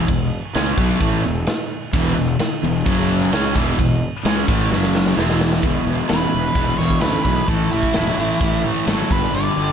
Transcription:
0.08 E1 E2 B2, kick, ride bell, tambourine
0.31 tambourine
0.44 tambourine
0.55 C#2 C#3 G#3 C#4, snare, ride bell, tambourine
0.78 B1 B2 F#3 B3, kick, tambourine
1.01 A1 A2 E3 A3, kick, ride bell
1.24 E1 E2 B2, snare, tambourine
1.47 snare, ride bell, tambourine
1.70 tambourine
1.82 tambourine
1.93 E1 E2 B2 E3, kick, ride bell, tambourine
2.16 E1 E2 B2, tambourine
2.29 tambourine
2.39 muted distorted electric guitar stroke, muted fingered electric bass stroke, snare, ride bell, tambourine
2.51 tambourine
2.62 E1 E2 B2, tambourine
2.86 F#1 F#2 C#3 F#3, kick, ride bell
3.09 tambourine
3.22 snare
3.32 C#2 C#3 G#3 C#4, snare, ride bell, tambourine
3.55 E1 E2 B2 E3, kick, tambourine
3.78 E1 E2 B2, kick, ride bell, tambourine
4.02 tambourine
4.13 tambourine
4.25 C#2 C#3 G#3 C#4, snare, ride bell, tambourine
4.36 snare, tambourine
4.48 A1 A2 E3 A3, kick, tambourine
4.60 tambourine
4.70 F#1 F#2 C#3 F#3, snare, tambourine
4.82 snare, tambourine
4.94 snare, tambourine
5.05 snare, tambourine
5.16 E1 E2 B2 E3, snare, tambourine
5.28 snare, tambourine
5.40 snare, tambourine
5.52 snare, tambourine
5.62 E1 E2 B2 E3 G#3 B3 E4, kick, ride bell
5.86 E1 E2 B2 E3 G#3 B3 E4
6.08 E1 E2 B2 C#3 E3 G#3 B3 E4 B4, snare, ride bell, tambourine
6.21 snare
6.32 E1 E2 B2 G#3 B3 E4
6.55 E1 E2 B2 E3 G#3 B3 E4, kick, ride bell
6.78 E1 E2 B2 E3 G#3 B3 E4 C#5, snare
6.90 kick
7.01 D2 E2 B2 C#3 E3 G#3 B3 E4 B4, snare, ride bell, tambourine
7.24 B1 E2 B2 B3 E4 B4, kick
7.28 E3 G#3
7.48 A1 A2 E3 A3 C#4 E4 A4, kick, ride bell
7.71 A1 A2 E3 C#4 E4
7.83 kick
7.93 E1 A2 E3 F#3 A3 C#4 E4, snare, ride bell, tambourine
8.07 snare
8.17 A1 A2 E3 A3 C#4 E4
8.41 A1 A2 E3 A3 C#4 E4, kick, ride bell
8.62 A2 E3 C#4 E4
8.66 A3
8.85 G#1 A2 E3 A3 C#4 E4 A4, snare, ride bell, tambourine
8.89 F#3
9.09 G1 G2 D3 G3 B3 D4 G4 B4, kick
9.32 G1 G2 D3 G3 B3 D4 G4 D5, ride bell
9.56 G1 G2 D3 G3 B3 D4 G4

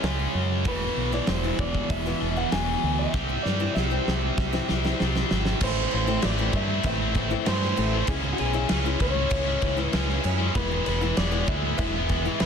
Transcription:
Already playing: C#3 G#3 C#4
0.03 C#2 C#3 G#3 C#4, snare, open hi-hat
0.19 muted steel-string acoustic guitar stroke
0.35 F#2
0.64 E1 E2 B2 E3 B4, kick, open hi-hat
0.82 muted steel-string acoustic guitar stroke
0.97 B1
1.12 E3 G#3 B3 E4 D5
1.27 E1 C5, muted steel-string acoustic guitar stroke, snare, open hi-hat
1.44 E3 G#3 B3 E4
1.59 E1 D5, kick
1.75 kick
1.90 E1 E5, muted steel-string acoustic guitar stroke, kick, open hi-hat
2.06 E3 G#3 B3 E4
2.20 E1 E2 B2 E3
2.36 E3 G#3 B3 E4 F#5
2.50 E1 E2 B2 E3 G#5, snare, open hi-hat
2.68 muted steel-string acoustic guitar stroke
2.83 D2
2.99 E5
3.13 C2 C3 G3 C4, kick, snare
3.29 muted steel-string acoustic guitar stroke
3.43 G2 D5, snare
3.60 E3 G3 C4 E4
3.75 C2 E5, muted steel-string acoustic guitar stroke, snare
3.90 E3 G3 C4 E4
4.08 C2, snare
4.37 C2, muted steel-string acoustic guitar stroke, kick, snare
4.53 E3 G3 C4 E4, snare
4.68 C2 C3 G3 C4, snare
4.84 E3 G3 C4 E4, snare
4.99 C2 C3 G3 C4, snare
5.15 muted steel-string acoustic guitar stroke, snare
5.31 G#1, snare
5.45 snare
5.60 A1 A2 E3 A3 C4 E4 C5, kick, crash
5.77 muted steel-string acoustic guitar stroke
5.91 A1 E3 A3 C4 E4 C5, crash
6.07 E3 A3 C4 E4, muted distorted electric guitar stroke
6.22 A1 A2 E3 A3 C4 E4 D5, muted steel-string acoustic guitar stroke, snare, crash
6.37 E3 A3 C4 E4
6.52 G2 E3 A3 C4 E4, muted steel-string acoustic guitar stroke, kick, crash
6.56 E5
6.69 A3 C4 E4
6.83 A1 E3 A3 C4 E4 E5, kick, crash
7.00 A3 C4 E4
7.14 E3 A3 C4 E4, kick, crash
7.19 E4
7.30 E3 A3 C4 E4, muted distorted electric guitar stroke
7.46 G2 A2 E3 A3 C4 E4 C5, snare, crash
7.62 A3 C4 E4, snare
7.77 A1 E3 A3 C4 E4, muted distorted electric guitar stroke, crash
7.92 A3 C4 E4
8.06 C#2 C#3 E3 G#3 C#4 E4 G#4, kick, crash
8.24 muted steel-string acoustic guitar stroke
8.33 F#4
8.38 B1 C#3 G#3 C#4 E4 G#4, crash
8.53 E3 G#3 C#4 E4, muted distorted electric guitar stroke
8.69 C#2 C#3 G#3 C#4 E4, muted steel-string acoustic guitar stroke, snare, crash
8.84 E3 G#3 C#4 E4
8.99 C#2 C#3 G#3 C#4 E4 C#5, muted steel-string acoustic guitar stroke, kick, crash
9.14 G#3 C#4 E4
9.30 C#2 E3 G#3 C#4 E4, kick, crash
9.45 G#3 C#4 E4
9.60 C#2 C#3 E3 G#3 C#4 E4, kick, crash
9.77 E3 G#3 C#4 E4, muted distorted electric guitar stroke
9.83 B4
9.92 C#2 C#3 G#3 C#4 E4, snare, crash
10.08 G#3 C#4 E4, snare
10.23 F#2 C#3 E3 G#3 C#4 E4, muted distorted electric guitar stroke, crash
10.38 G#3 C#4 E4
10.55 E1 E3 G#3 B3 E4 B4, kick, crash
10.71 muted steel-string acoustic guitar stroke
10.86 E1 E3 G#3 B3 E4 B4, crash
11.01 E3 G#3 B3 E4, muted distorted electric guitar stroke
11.17 E1 E3 G#3 B3 E4 D5, muted steel-string acoustic guitar stroke, snare, crash
11.31 E3 G#3 B3 E4
11.46 D2 E3 G#3 B3 E5, muted steel-string acoustic guitar stroke, kick, crash
11.51 E4
11.64 G#3 B3 E4
11.78 E1 E3 G#3 B3 E4 E5, kick, crash
11.95 G#3 B3 E4
12.09 E3 G#3 B3 E4, kick, crash
12.25 E3 G#3 B3 E4, muted distorted electric guitar stroke
12.40 D2 E3 G#3 B3 B4, snare, crash

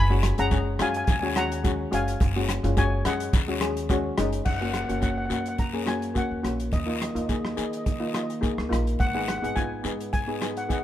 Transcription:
Already playing: F#1 G#5 B5
0.10 G#3 C#4 F#4
0.23 cross-stick, closed hi-hat
0.38 F#1 G#3 C#4 G#4 F#5 A#5, closed hi-hat
0.51 G#3 C#4 G#4, kick, closed hi-hat, short guiro
0.79 F#2 G#3 C#4 F#4 F5 G#5, cross-stick, closed hi-hat, short guiro
0.89 G#5
0.94 G#5, closed hi-hat
1.04 D#2 G#5, kick, closed hi-hat, short guiro, long guiro
1.11 G#5
1.20 G#3 C#4 F#4 G#5
1.26 G#5
1.36 G#3 C#4 F#4 F#5 A#5, cross-stick, closed hi-hat
1.52 closed hi-hat
1.64 G#3 C#4 F#4, kick, closed hi-hat, short guiro
1.91 F#1 G#3 C#4 F#4 F5 G#5, closed hi-hat
2.08 closed hi-hat
2.20 F#1, kick, closed hi-hat, long guiro
2.36 G#3 C#4 F#4
2.49 cross-stick, closed hi-hat
2.64 F#1 G#3 C#4 F4, closed hi-hat
2.77 G#3 C#4 F#4 C#5 G#5, kick, closed hi-hat, short guiro
3.05 F#2 G#3 C#4 G#4 D#5 F#5, cross-stick, closed hi-hat, short guiro
3.20 closed hi-hat
3.33 D#2, kick, closed hi-hat, short guiro, long guiro
3.48 G#3 C#4 F#4
3.61 G#3 C#4 G#4, cross-stick, closed hi-hat
3.77 closed hi-hat
3.89 G#3 C#4 F#4, kick, closed hi-hat, short guiro
4.18 F#1 G#3 C#4 D#4, cross-stick, closed hi-hat
4.33 closed hi-hat
4.45 F#1 F#5, kick, crash, long guiro
4.54 F#5
4.61 A#3 C#4 F#4 F#5
4.69 F#5
4.74 F#5, cross-stick, closed hi-hat
4.84 F#5
4.88 F#1 A#3 C#4 F#4 F#5, closed hi-hat
5.01 A#3 C#4 F#4 F#5, kick, closed hi-hat, short guiro
5.10 F#5
5.18 F#5
5.25 C#4 F#5
5.29 F#2 A#3 F#4, closed hi-hat, short guiro
5.34 F#5
5.41 F#5
5.46 F#5, closed hi-hat
5.58 A#5, kick, closed hi-hat, long guiro
5.73 A#3 C#4 G#4
5.86 A#3 C#4 F#4 G#5, cross-stick, closed hi-hat, short guiro
6.02 closed hi-hat
6.14 A#3 C#4 F#4 F#5, kick, closed hi-hat, short guiro
6.31 D#2
6.43 A#1 A#3 C#4 F#4, cross-stick, closed hi-hat
6.60 closed hi-hat
6.72 D#2 D#5, kick, closed hi-hat, long guiro
6.80 D#5
6.86 A#3 D#4 F4 D#5
6.96 D#5
7.02 D#5, cross-stick, closed hi-hat
7.11 A#3 D#4 D#5
7.15 D#2 F4 D#5, closed hi-hat
7.26 A#3 D#4 G#4 D#5, kick, closed hi-hat, short guiro
7.32 D#5
7.40 D#5
7.45 D#5, cross-stick
7.54 D#3 A#3 D#4 G#4 D#5, closed hi-hat, short guiro
7.63 D#5
7.71 D#5, closed hi-hat
7.77 D#5
7.84 D#5, kick, closed hi-hat, long guiro
7.92 D#5
7.99 A#3 D#4 F4 D#5
8.08 D#5
8.13 A#3 D#4 F4 D#5, cross-stick, closed hi-hat, short guiro
8.23 D#5
8.30 closed hi-hat
8.41 A#3 D#4 G#4, kick, closed hi-hat, short guiro
8.58 C#2, cross-stick
8.69 A#1 A#3 D#4 F4, cross-stick, closed hi-hat
8.87 closed hi-hat
8.99 G#1 F#5, kick, closed hi-hat, long guiro
9.07 F#5
9.14 B3 D#4 G#4 F#5
9.21 F#5
9.28 F#5, cross-stick, closed hi-hat
9.38 F#5
9.42 G#1 B3 D#4 G#4 F#5, closed hi-hat
9.55 B3 D#4 F4 G#5, kick, closed hi-hat, short guiro
9.83 G#2 B3 D#4 G#4, closed hi-hat, short guiro
10.00 closed hi-hat
10.13 G#5, kick, closed hi-hat, long guiro
10.27 B3 D#4 G#4
10.41 B3 D#4 G#4, cross-stick, closed hi-hat, short guiro
10.57 F#5, closed hi-hat
10.64 F#5
10.69 B3 D#4 G#4 F#5, kick, closed hi-hat, short guiro
10.79 F#5

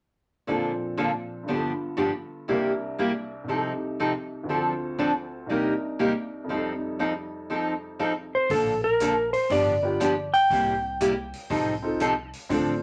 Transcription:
0.47 A#2 D3 F3 A#3 C4 D4 A4
0.97 A#2 D3 F3 A#3 D4 A4
1.43 G2 D3
1.48 G2 D3 F3 B3 D4 G4
1.53 F4 A4
1.97 G2 D3 F3 B3 D4 G4
2.48 C2 C3 G3 A#3 D4 E4 G4 A#4
2.99 C3 G3 A#3 E4 G4
3.44 C2 C3
3.48 C3 F3 C4 D#4 G4 A4
3.54 A4
4.00 C3 F3 C4 D#4 A4
4.44 D2 D3
4.49 D3 F3 C4 D4 F4 A4
4.54 A4
4.99 D3 F3 C4 D4 A4
5.46 C2 C3 G3 A#3 D4 D#4
5.50 D#4 G4 A#4
5.99 C3 G3 A#3 D#4 G4
6.44 F2 C3
6.49 F3 G3 C4 D#4 A4
6.55 A4
6.99 F3 C4 D#4 A4
7.50 F3 C4 D#4 A4
7.99 F3 C4 D#4 A4
8.35 C5
8.50 A#1 D3 F3 A#3 D4 A4, kick, open hi-hat
8.84 A#4
9.00 D3 F3 A#3 D4 A4, closed hi-hat
9.33 C5, open hi-hat
9.50 G1 D3 F3 B3 D4 G4 D5, kick, open hi-hat
9.83 B3 D4 F4 G4
10.00 D3 F3 B3 D4 G4, closed hi-hat
10.34 G5, open hi-hat
10.50 C2 C3 G3 A#3 E4 G4, kick, open hi-hat
11.01 C3 G3 A#3 E4 G4, closed hi-hat
11.33 open hi-hat
11.50 C2 C3 F3 C4 D#4 A4, kick, open hi-hat
11.82 C4 D#4 F4 A4
12.00 C3 F3 C4 D#4 A4, closed hi-hat
12.33 open hi-hat
12.49 D2 D3 F3 C4 D4 F4 A4, kick, open hi-hat

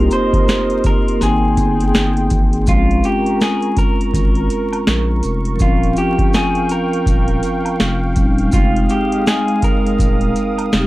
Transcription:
Already playing: A#3 C4 D#4 G4 A#4 D#5 C6
0.11 C5, closed hi-hat, maracas
0.33 kick, closed hi-hat
0.49 snare, closed hi-hat, maracas
0.70 closed hi-hat
0.84 A#4, kick, closed hi-hat, maracas
1.08 closed hi-hat
1.15 A#3
1.19 G#1 C4 D#4 G#4 G5, snare, closed hi-hat, maracas
1.27 G5
1.57 G1, kick, closed hi-hat, maracas
1.80 closed hi-hat
1.95 G1, snare, closed hi-hat, maracas
2.17 closed hi-hat
2.30 G#1, kick, closed hi-hat, maracas
2.53 closed hi-hat
2.63 G#3 C4 A#5, maracas
2.67 A#1 C#4 F4 A#4 C#6, kick, closed hi-hat
2.75 F4
2.91 closed hi-hat
3.04 G4, closed hi-hat, maracas
3.26 closed hi-hat
3.41 G#4, snare, closed hi-hat, maracas
3.62 closed hi-hat
3.77 A#4, kick, closed hi-hat, maracas
4.01 closed hi-hat
4.14 G#1, kick, closed hi-hat, maracas
4.35 closed hi-hat
4.50 closed hi-hat, maracas
4.73 closed hi-hat, high woodblock
4.87 A#1, snare, closed hi-hat, maracas
5.23 F1, closed hi-hat, maracas
5.45 closed hi-hat
5.55 F3 C4
5.59 D#1 C#4 F4 F5 G5, kick, closed hi-hat, maracas
5.67 F4
5.83 closed hi-hat
5.96 G4, closed hi-hat, maracas
6.19 kick, closed hi-hat
6.34 G#4, snare, closed hi-hat, maracas
6.55 closed hi-hat
6.69 A#4, closed hi-hat, maracas
6.93 closed hi-hat
7.06 D#1, kick, closed hi-hat, maracas
7.28 closed hi-hat
7.43 closed hi-hat, maracas
7.65 closed hi-hat, high woodblock
7.80 F1, snare, closed hi-hat, maracas
8.14 D#1 G3 C4 C#4, kick, closed hi-hat, maracas
8.20 D#4
8.38 closed hi-hat
8.45 G#3
8.49 G#3 C4 D#4 D#6, kick, maracas
8.53 F1 F4 G5, closed hi-hat
8.76 closed hi-hat
8.89 G4, closed hi-hat, maracas
9.12 closed hi-hat
9.27 G#4, snare, closed hi-hat, maracas
9.48 closed hi-hat
9.62 A#4, kick, closed hi-hat, maracas
9.86 closed hi-hat
9.99 D#1, kick, closed hi-hat, maracas
10.21 closed hi-hat
10.36 closed hi-hat, maracas
10.58 closed hi-hat, high woodblock
10.72 F1 G3 C4, snare, closed hi-hat, maracas
10.76 G#3 D#4 G4

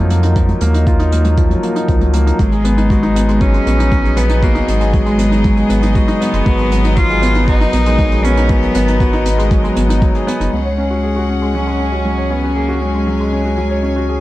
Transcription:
Already playing: F2 F3 F#3 A#3 D#4 F4
0.10 A#3, closed hi-hat
0.23 D#4, closed hi-hat
0.36 F3, kick, closed hi-hat
0.48 F#3, closed hi-hat
0.61 D#2 A#3, closed hi-hat
0.74 D#4, closed hi-hat
0.87 F4, kick, closed hi-hat
0.99 D#4, closed hi-hat
1.12 A#3, closed hi-hat
1.25 F#3, closed hi-hat
1.37 F3, kick, closed hi-hat
1.50 F#3, closed hi-hat
1.63 A#3, closed hi-hat
1.76 D#4, closed hi-hat
1.88 C#2 F3, kick, closed hi-hat
2.01 F#3, closed hi-hat
2.13 A#3, closed hi-hat
2.26 D#4, closed hi-hat
2.39 G#1 F#3 G#3 B3 G#4 D#5, kick, closed hi-hat
2.52 G#4, closed hi-hat
2.65 B3, closed hi-hat
2.77 D#4, closed hi-hat
2.90 F#4, kick, closed hi-hat
3.03 D#4, closed hi-hat
3.15 B3, closed hi-hat
3.28 G#3, closed hi-hat
3.41 F#3 C#4, kick, closed hi-hat
3.53 G#3, closed hi-hat
3.66 A#1 B3, closed hi-hat
3.79 D#4, closed hi-hat
3.92 F#3, kick, closed hi-hat
4.04 G#4, closed hi-hat
4.17 B3, closed hi-hat
4.29 D#4, closed hi-hat
4.42 A#3 F#4, kick, closed hi-hat
4.55 D#4, closed hi-hat
4.68 G#1 G#3 B3, closed hi-hat
4.80 G#3, closed hi-hat
4.93 F#3, kick, closed hi-hat
5.06 G#3, closed hi-hat
5.18 B3, closed hi-hat
5.31 D#4, closed hi-hat
5.44 F#3, kick, closed hi-hat
5.57 G#4, closed hi-hat
5.69 G#1 B3, closed hi-hat
5.82 D#4, closed hi-hat
5.95 F#4, kick, closed hi-hat
6.08 D#4, closed hi-hat
6.21 B3, closed hi-hat
6.33 F#1 G#3, closed hi-hat
6.46 G#1 F#3 A#4, kick, closed hi-hat
6.59 G#3, closed hi-hat
6.71 B3, closed hi-hat
6.84 D#4, closed hi-hat
6.96 F#3 F4, kick, closed hi-hat
7.10 G#4, closed hi-hat
7.22 B3, closed hi-hat
7.35 D#4, closed hi-hat
7.48 D#4 F#4, kick, closed hi-hat
7.60 D#4, closed hi-hat
7.73 A#1 B3, closed hi-hat
7.86 G#3, closed hi-hat
7.99 F#3, kick, closed hi-hat
8.12 G#3, closed hi-hat
8.24 B3 C#4, closed hi-hat
8.37 D#4, closed hi-hat
8.49 F#3 B3, kick, closed hi-hat
8.62 G#4, closed hi-hat
8.75 G#1 B3, closed hi-hat
8.88 D#4, closed hi-hat
9.00 F#4, kick, closed hi-hat
9.13 D#4, closed hi-hat
9.26 B3, closed hi-hat
9.38 G#3, closed hi-hat
9.51 F#3, kick, closed hi-hat
9.64 G#3, closed hi-hat
9.76 G#1 B3, closed hi-hat
9.89 D#4, closed hi-hat
10.02 F#3, kick, closed hi-hat
10.15 G#4, closed hi-hat
10.27 B3, closed hi-hat
10.40 F#1 D#4, closed hi-hat
10.53 C#2 F#3 G#3 C#4 G#4 F#5
10.65 C#5
10.78 C#4
10.91 F#4
11.03 G#4
11.16 F#4
11.29 C#4
11.42 G#3
11.55 F#3 C#4
11.67 G#3
11.79 C#4
11.92 F#4
12.05 F#3
12.18 C#5
12.30 B3 C#4
12.43 F#4
12.56 A#3 G#4 G#5
12.69 F#4
12.81 G#3 C#4
12.94 G#3
13.07 F#3
13.20 G#3
13.32 C#4
13.45 F#4
13.58 F#3
13.71 C#5
13.83 C#4
13.96 F#4
14.09 G#4

